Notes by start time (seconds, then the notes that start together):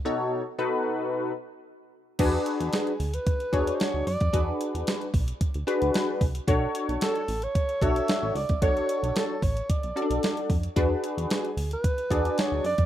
0.05 B2 D#4 F#4 A4 C#5
0.58 B2 D#4 F#4 A4 B4
2.19 E2 D4 F#4 G#4 B4, kick, closed hi-hat, crash
2.46 closed hi-hat
2.60 E2, closed hi-hat
2.73 G#4, snare, closed hi-hat
2.87 closed hi-hat
3.00 D2, open hi-hat
3.14 B4, closed hi-hat
3.27 kick, closed hi-hat
3.40 closed hi-hat
3.52 E2 D4 F#4 G#4 C#5, kick, closed hi-hat
3.67 closed hi-hat
3.75 C5
3.80 C#5, snare, closed hi-hat
3.94 D2
4.07 F#2 D5, open hi-hat
4.21 F2, kick, closed hi-hat
4.33 E2 D4 F#4 G#4 B4, kick, closed hi-hat
4.61 closed hi-hat
4.74 E2, closed hi-hat
4.87 snare, closed hi-hat
5.01 closed hi-hat
5.14 B1, kick, open hi-hat
5.28 closed hi-hat
5.41 kick, closed hi-hat
5.54 D2, closed hi-hat
5.67 D4 F#4 G#4 B4, closed hi-hat
5.82 D2, closed hi-hat
5.94 snare, closed hi-hat
6.21 C2, kick, open hi-hat
6.35 closed hi-hat
6.47 B1 D4 F#4 A4 C#5, kick, closed hi-hat
6.75 closed hi-hat
6.88 B1, closed hi-hat
7.01 A4, snare, closed hi-hat
7.15 closed hi-hat
7.28 A1, open hi-hat
7.42 C#5, closed hi-hat
7.55 kick, closed hi-hat
7.69 closed hi-hat
7.81 B1 D4 F#4 A4 C#5 E5, kick, closed hi-hat
7.96 closed hi-hat
8.08 snare, closed hi-hat
8.23 A1
8.35 C#2 D5, open hi-hat
8.49 C2, kick, closed hi-hat
8.62 B1 D4 F#4 A4 C#5, kick, closed hi-hat
8.77 closed hi-hat
8.89 closed hi-hat
9.03 B1, closed hi-hat
9.16 A4, snare, closed hi-hat
9.42 A1 C#5, kick, open hi-hat
9.57 closed hi-hat
9.69 D5, kick, closed hi-hat
9.83 B1, closed hi-hat
9.96 C#4 F#4 A4 D5, closed hi-hat
10.02 D4
10.10 B1, closed hi-hat
10.23 snare, closed hi-hat
10.37 closed hi-hat
10.50 F2, kick, open hi-hat
10.63 closed hi-hat
10.76 E2 D4 F#4 G#4 B4, kick, closed hi-hat
11.04 closed hi-hat
11.17 E2, closed hi-hat
11.30 G#4, snare, closed hi-hat
11.45 closed hi-hat
11.57 D2, open hi-hat
11.71 B4, closed hi-hat
11.84 kick, closed hi-hat
11.98 closed hi-hat
12.10 E2 D4 F#4 G#4 D5, kick, closed hi-hat
12.25 closed hi-hat
12.38 C#5, snare, closed hi-hat
12.52 D2
12.64 F#2 D5, open hi-hat
12.78 F2, kick, closed hi-hat